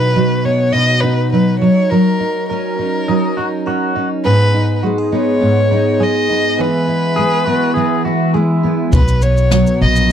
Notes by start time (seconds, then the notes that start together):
Already playing: B2 F#3 B3 D#4 B4
0.16 F#3 D#4
0.45 B3 C#5
0.73 B2 F#3 D#5
1.01 B3 D#4 B4
1.32 F#3 D#4 B4
1.59 F#3 C#5
1.90 F#3 A#4
2.20 D#4
2.49 C#4 A#4
2.79 C#4 D#4
3.08 F#3 C#4 D#4
3.37 D#4 F#4
3.66 C#4 F#4 A#4
3.96 C#4 D#4
4.25 G#2 B3 G#4 B4
4.54 D#4
4.83 G#3 F#4
4.98 G#4
5.12 B3 D#4 C#5
5.42 G#2 B3
5.71 D#4
6.00 G#3 G#4 D#5
6.30 B3 D#4
6.59 E3 B3 G#4 B4
6.88 E4
7.16 G#3 G#4
7.46 B3 E4 F#4
7.74 E3 B3 G#4
8.05 E4 F#4
8.34 G#3 E4 G#4
8.63 B3 E4
8.93 B1 B2 F#3 B4, kick, shaker
9.08 shaker
9.22 F#3 B3 C#5, shaker
9.37 shaker
9.51 F#3 B3, snare, shaker
9.67 shaker
9.81 A#1 F#3 B4 D#5
9.96 shaker